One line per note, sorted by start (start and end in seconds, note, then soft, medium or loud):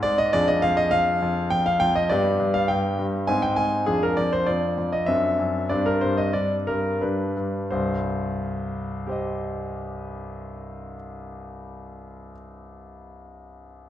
0.00 0.32 G#2 medium
0.00 0.29 C4 soft
0.00 0.29 G#4 soft
0.00 0.18 D5 medium
0.18 0.33 D#5 medium
0.33 0.62 F2 medium
0.33 2.07 D4 soft
0.33 2.07 G#4 soft
0.33 0.48 D5 medium
0.48 0.62 D#5 medium
0.62 0.91 F2 medium
0.62 0.77 F5 medium
0.77 0.92 D#5 medium
0.91 1.21 F2 soft
0.91 1.50 F5 medium
1.22 1.50 F2 soft
1.50 1.80 F2 soft
1.50 1.65 G5 medium
1.66 1.81 F5 medium
1.80 2.10 F2 medium
1.80 1.95 G5 medium
1.95 2.10 D#5 medium
2.09 2.38 G2 medium
2.09 3.25 B3 soft
2.09 3.25 G4 soft
2.09 2.54 D5 medium
2.40 2.68 G2 soft
2.54 2.69 F5 medium
2.68 2.97 G2 soft
2.68 3.04 G5 medium
2.99 3.27 G2 soft
3.27 3.56 G#2 medium
3.27 3.84 C4 soft
3.27 3.84 D#4 soft
3.27 3.43 G#5 medium
3.42 3.57 G5 medium
3.56 3.87 G#2 soft
3.56 3.84 G#5 medium
3.86 4.17 F2 soft
3.86 5.05 D4 soft
3.86 4.02 G#4 medium
4.03 4.18 A#4 medium
4.17 4.46 F2 soft
4.17 4.33 D5 medium
4.33 4.48 C5 medium
4.46 4.76 F2 soft
4.46 4.93 D5 medium
4.78 5.08 F2 soft
4.92 5.08 D#5 medium
5.06 5.38 F#2 soft
5.06 5.67 C4 soft
5.06 5.67 D4 soft
5.06 5.66 E5 medium
5.39 5.70 F#2 soft
5.69 6.01 G2 soft
5.69 6.98 C4 soft
5.69 6.98 D4 soft
5.69 5.86 D5 medium
5.86 6.03 A#4 medium
6.01 6.33 G2 soft
6.01 6.18 C5 medium
6.17 6.35 D#5 medium
6.33 6.67 G2 soft
6.33 6.54 D5 medium
6.67 7.01 G2 soft
6.67 7.02 A#4 medium
7.01 7.35 G2 soft
7.01 7.68 D4 soft
7.01 7.67 B4 soft
7.37 7.70 G2 soft
7.71 10.95 C2 soft
7.71 10.94 G2 soft
7.71 9.07 C5 soft
9.07 12.30 G4 soft
9.07 12.32 C5 soft
9.11 12.34 D#5 soft